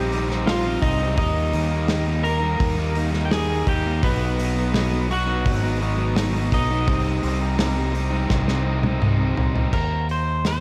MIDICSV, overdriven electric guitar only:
0, 0, Header, 1, 3, 480
1, 0, Start_track
1, 0, Key_signature, -3, "minor"
1, 0, Tempo, 713436
1, 793, Time_signature, 4, 2, 24, 8
1, 7134, End_track
2, 0, Start_track
2, 0, Title_t, "Overdriven electric guitar"
2, 0, Program_c, 0, 29
2, 0, Note_on_c, 0, 55, 58
2, 0, Note_on_c, 0, 60, 70
2, 0, Note_on_c, 0, 63, 72
2, 84, Note_on_c, 0, 48, 63
2, 86, Note_off_c, 0, 55, 0
2, 87, Note_off_c, 0, 60, 0
2, 94, Note_on_c, 0, 55, 74
2, 95, Note_on_c, 0, 60, 75
2, 96, Note_off_c, 0, 63, 0
2, 99, Note_on_c, 0, 63, 88
2, 198, Note_off_c, 0, 63, 0
2, 201, Note_off_c, 0, 60, 0
2, 201, Note_on_c, 0, 63, 72
2, 209, Note_on_c, 0, 60, 65
2, 211, Note_off_c, 0, 55, 0
2, 219, Note_on_c, 0, 55, 58
2, 320, Note_off_c, 0, 48, 0
2, 321, Note_off_c, 0, 55, 0
2, 324, Note_off_c, 0, 60, 0
2, 328, Note_on_c, 0, 48, 94
2, 329, Note_on_c, 0, 55, 103
2, 332, Note_on_c, 0, 60, 99
2, 336, Note_off_c, 0, 63, 0
2, 338, Note_on_c, 0, 63, 107
2, 438, Note_off_c, 0, 63, 0
2, 440, Note_off_c, 0, 60, 0
2, 440, Note_on_c, 0, 63, 78
2, 447, Note_off_c, 0, 55, 0
2, 448, Note_on_c, 0, 60, 63
2, 455, Note_on_c, 0, 55, 66
2, 680, Note_off_c, 0, 48, 0
2, 681, Note_off_c, 0, 60, 0
2, 682, Note_off_c, 0, 63, 0
2, 685, Note_on_c, 0, 63, 72
2, 689, Note_on_c, 0, 60, 63
2, 690, Note_off_c, 0, 55, 0
2, 698, Note_on_c, 0, 55, 65
2, 787, Note_off_c, 0, 60, 0
2, 791, Note_off_c, 0, 55, 0
2, 801, Note_on_c, 0, 51, 98
2, 804, Note_on_c, 0, 55, 116
2, 808, Note_off_c, 0, 63, 0
2, 810, Note_on_c, 0, 63, 104
2, 812, Note_on_c, 0, 58, 105
2, 1024, Note_off_c, 0, 51, 0
2, 1027, Note_off_c, 0, 55, 0
2, 1032, Note_on_c, 0, 51, 71
2, 1035, Note_off_c, 0, 58, 0
2, 1035, Note_on_c, 0, 55, 70
2, 1043, Note_on_c, 0, 58, 78
2, 1045, Note_off_c, 0, 63, 0
2, 1048, Note_on_c, 0, 63, 83
2, 1259, Note_off_c, 0, 51, 0
2, 1263, Note_off_c, 0, 55, 0
2, 1266, Note_off_c, 0, 58, 0
2, 1267, Note_on_c, 0, 51, 105
2, 1271, Note_on_c, 0, 55, 99
2, 1274, Note_on_c, 0, 58, 100
2, 1275, Note_off_c, 0, 63, 0
2, 1278, Note_on_c, 0, 63, 113
2, 1376, Note_off_c, 0, 63, 0
2, 1379, Note_on_c, 0, 63, 74
2, 1384, Note_off_c, 0, 58, 0
2, 1389, Note_off_c, 0, 55, 0
2, 1393, Note_on_c, 0, 58, 64
2, 1398, Note_on_c, 0, 55, 54
2, 1497, Note_off_c, 0, 51, 0
2, 1499, Note_off_c, 0, 55, 0
2, 1501, Note_off_c, 0, 58, 0
2, 1510, Note_off_c, 0, 63, 0
2, 1614, Note_on_c, 0, 63, 71
2, 1625, Note_on_c, 0, 58, 72
2, 1632, Note_on_c, 0, 55, 68
2, 1863, Note_off_c, 0, 63, 0
2, 1865, Note_off_c, 0, 58, 0
2, 1866, Note_on_c, 0, 63, 73
2, 1873, Note_off_c, 0, 55, 0
2, 1873, Note_on_c, 0, 58, 68
2, 1881, Note_on_c, 0, 55, 56
2, 1980, Note_off_c, 0, 55, 0
2, 1982, Note_on_c, 0, 51, 72
2, 1987, Note_off_c, 0, 58, 0
2, 1988, Note_on_c, 0, 55, 73
2, 1995, Note_on_c, 0, 58, 73
2, 1996, Note_off_c, 0, 63, 0
2, 1998, Note_on_c, 0, 63, 84
2, 2094, Note_off_c, 0, 63, 0
2, 2097, Note_on_c, 0, 63, 67
2, 2103, Note_off_c, 0, 58, 0
2, 2110, Note_off_c, 0, 55, 0
2, 2111, Note_on_c, 0, 58, 61
2, 2118, Note_on_c, 0, 55, 52
2, 2215, Note_off_c, 0, 51, 0
2, 2220, Note_off_c, 0, 55, 0
2, 2222, Note_off_c, 0, 58, 0
2, 2223, Note_on_c, 0, 51, 94
2, 2228, Note_on_c, 0, 55, 94
2, 2230, Note_on_c, 0, 58, 101
2, 2233, Note_off_c, 0, 63, 0
2, 2235, Note_on_c, 0, 63, 101
2, 2339, Note_off_c, 0, 63, 0
2, 2340, Note_off_c, 0, 58, 0
2, 2342, Note_on_c, 0, 63, 74
2, 2348, Note_on_c, 0, 58, 68
2, 2352, Note_off_c, 0, 55, 0
2, 2360, Note_on_c, 0, 55, 62
2, 2586, Note_off_c, 0, 51, 0
2, 2586, Note_off_c, 0, 63, 0
2, 2588, Note_on_c, 0, 63, 71
2, 2592, Note_off_c, 0, 58, 0
2, 2597, Note_off_c, 0, 55, 0
2, 2600, Note_on_c, 0, 58, 63
2, 2605, Note_on_c, 0, 55, 61
2, 2700, Note_off_c, 0, 58, 0
2, 2703, Note_off_c, 0, 55, 0
2, 2708, Note_on_c, 0, 47, 103
2, 2720, Note_on_c, 0, 54, 102
2, 2721, Note_on_c, 0, 59, 109
2, 2726, Note_off_c, 0, 63, 0
2, 2729, Note_on_c, 0, 63, 113
2, 2947, Note_off_c, 0, 47, 0
2, 2953, Note_off_c, 0, 54, 0
2, 2955, Note_on_c, 0, 47, 72
2, 2959, Note_off_c, 0, 59, 0
2, 2962, Note_on_c, 0, 54, 78
2, 2967, Note_off_c, 0, 63, 0
2, 2967, Note_on_c, 0, 59, 76
2, 2969, Note_on_c, 0, 63, 82
2, 3179, Note_off_c, 0, 47, 0
2, 3187, Note_on_c, 0, 47, 105
2, 3192, Note_off_c, 0, 54, 0
2, 3194, Note_off_c, 0, 59, 0
2, 3201, Note_on_c, 0, 54, 96
2, 3203, Note_on_c, 0, 59, 105
2, 3204, Note_off_c, 0, 63, 0
2, 3207, Note_on_c, 0, 63, 125
2, 3306, Note_off_c, 0, 63, 0
2, 3308, Note_on_c, 0, 63, 77
2, 3309, Note_off_c, 0, 59, 0
2, 3315, Note_off_c, 0, 54, 0
2, 3318, Note_on_c, 0, 59, 62
2, 3323, Note_on_c, 0, 54, 57
2, 3411, Note_off_c, 0, 47, 0
2, 3417, Note_off_c, 0, 54, 0
2, 3420, Note_off_c, 0, 59, 0
2, 3422, Note_off_c, 0, 63, 0
2, 3542, Note_on_c, 0, 63, 73
2, 3546, Note_on_c, 0, 59, 71
2, 3553, Note_on_c, 0, 54, 55
2, 3785, Note_off_c, 0, 63, 0
2, 3786, Note_off_c, 0, 59, 0
2, 3787, Note_on_c, 0, 63, 68
2, 3794, Note_off_c, 0, 54, 0
2, 3794, Note_on_c, 0, 59, 63
2, 3802, Note_on_c, 0, 54, 65
2, 3895, Note_on_c, 0, 47, 73
2, 3899, Note_off_c, 0, 59, 0
2, 3900, Note_off_c, 0, 54, 0
2, 3907, Note_on_c, 0, 59, 83
2, 3908, Note_on_c, 0, 54, 82
2, 3911, Note_off_c, 0, 63, 0
2, 3914, Note_on_c, 0, 63, 81
2, 4016, Note_off_c, 0, 63, 0
2, 4017, Note_off_c, 0, 59, 0
2, 4019, Note_on_c, 0, 63, 70
2, 4021, Note_off_c, 0, 54, 0
2, 4025, Note_on_c, 0, 59, 61
2, 4029, Note_on_c, 0, 54, 54
2, 4130, Note_off_c, 0, 47, 0
2, 4137, Note_off_c, 0, 54, 0
2, 4138, Note_on_c, 0, 47, 89
2, 4145, Note_off_c, 0, 59, 0
2, 4145, Note_on_c, 0, 54, 105
2, 4152, Note_off_c, 0, 63, 0
2, 4153, Note_on_c, 0, 59, 108
2, 4155, Note_on_c, 0, 63, 108
2, 4255, Note_off_c, 0, 63, 0
2, 4258, Note_on_c, 0, 63, 77
2, 4262, Note_off_c, 0, 59, 0
2, 4270, Note_off_c, 0, 54, 0
2, 4270, Note_on_c, 0, 59, 69
2, 4278, Note_on_c, 0, 54, 67
2, 4503, Note_off_c, 0, 47, 0
2, 4510, Note_off_c, 0, 63, 0
2, 4511, Note_off_c, 0, 59, 0
2, 4513, Note_on_c, 0, 63, 83
2, 4514, Note_off_c, 0, 54, 0
2, 4519, Note_on_c, 0, 59, 64
2, 4522, Note_on_c, 0, 54, 57
2, 4619, Note_off_c, 0, 59, 0
2, 4620, Note_off_c, 0, 54, 0
2, 4621, Note_on_c, 0, 48, 99
2, 4632, Note_on_c, 0, 55, 104
2, 4636, Note_on_c, 0, 60, 101
2, 4639, Note_off_c, 0, 63, 0
2, 4642, Note_on_c, 0, 63, 103
2, 4849, Note_off_c, 0, 48, 0
2, 4854, Note_off_c, 0, 55, 0
2, 4857, Note_on_c, 0, 48, 71
2, 4860, Note_off_c, 0, 60, 0
2, 4862, Note_on_c, 0, 55, 78
2, 4864, Note_off_c, 0, 63, 0
2, 4868, Note_on_c, 0, 60, 71
2, 4872, Note_on_c, 0, 63, 77
2, 5085, Note_off_c, 0, 48, 0
2, 5092, Note_off_c, 0, 55, 0
2, 5093, Note_on_c, 0, 48, 97
2, 5096, Note_off_c, 0, 60, 0
2, 5099, Note_off_c, 0, 63, 0
2, 5100, Note_on_c, 0, 55, 84
2, 5105, Note_on_c, 0, 60, 100
2, 5107, Note_on_c, 0, 63, 99
2, 5198, Note_off_c, 0, 63, 0
2, 5204, Note_off_c, 0, 60, 0
2, 5206, Note_on_c, 0, 63, 72
2, 5212, Note_on_c, 0, 60, 59
2, 5215, Note_off_c, 0, 55, 0
2, 5223, Note_on_c, 0, 55, 57
2, 5328, Note_off_c, 0, 48, 0
2, 5330, Note_off_c, 0, 55, 0
2, 5331, Note_off_c, 0, 63, 0
2, 5333, Note_off_c, 0, 60, 0
2, 5451, Note_on_c, 0, 63, 72
2, 5462, Note_on_c, 0, 60, 70
2, 5468, Note_on_c, 0, 55, 59
2, 5691, Note_off_c, 0, 63, 0
2, 5699, Note_on_c, 0, 63, 76
2, 5702, Note_off_c, 0, 60, 0
2, 5709, Note_off_c, 0, 55, 0
2, 5710, Note_on_c, 0, 60, 72
2, 5717, Note_on_c, 0, 55, 59
2, 5809, Note_on_c, 0, 48, 68
2, 5810, Note_off_c, 0, 55, 0
2, 5812, Note_off_c, 0, 60, 0
2, 5818, Note_on_c, 0, 55, 66
2, 5821, Note_on_c, 0, 60, 68
2, 5822, Note_off_c, 0, 63, 0
2, 5830, Note_on_c, 0, 63, 74
2, 5926, Note_off_c, 0, 63, 0
2, 5934, Note_on_c, 0, 63, 68
2, 5937, Note_off_c, 0, 60, 0
2, 5945, Note_off_c, 0, 55, 0
2, 5945, Note_on_c, 0, 60, 63
2, 5954, Note_on_c, 0, 55, 51
2, 6045, Note_off_c, 0, 48, 0
2, 6053, Note_on_c, 0, 48, 88
2, 6056, Note_off_c, 0, 55, 0
2, 6061, Note_off_c, 0, 60, 0
2, 6064, Note_on_c, 0, 55, 92
2, 6065, Note_off_c, 0, 63, 0
2, 6069, Note_on_c, 0, 60, 98
2, 6073, Note_on_c, 0, 63, 101
2, 6166, Note_off_c, 0, 63, 0
2, 6174, Note_on_c, 0, 63, 67
2, 6176, Note_off_c, 0, 60, 0
2, 6184, Note_on_c, 0, 60, 67
2, 6185, Note_off_c, 0, 55, 0
2, 6193, Note_on_c, 0, 55, 58
2, 6412, Note_off_c, 0, 63, 0
2, 6417, Note_off_c, 0, 60, 0
2, 6420, Note_on_c, 0, 63, 67
2, 6421, Note_off_c, 0, 48, 0
2, 6425, Note_off_c, 0, 55, 0
2, 6425, Note_on_c, 0, 60, 73
2, 6433, Note_on_c, 0, 55, 53
2, 6530, Note_off_c, 0, 63, 0
2, 6533, Note_off_c, 0, 60, 0
2, 6537, Note_off_c, 0, 55, 0
2, 7134, End_track
3, 0, Start_track
3, 0, Title_t, "Muted overdriven electric guitar strokes"
3, 1505, Note_on_c, 9, 29, 54
3, 1572, Note_off_c, 9, 29, 0
3, 3419, Note_on_c, 9, 29, 47
3, 3486, Note_off_c, 9, 29, 0
3, 5336, Note_on_c, 9, 29, 46
3, 5403, Note_off_c, 9, 29, 0
3, 7134, End_track
0, 0, End_of_file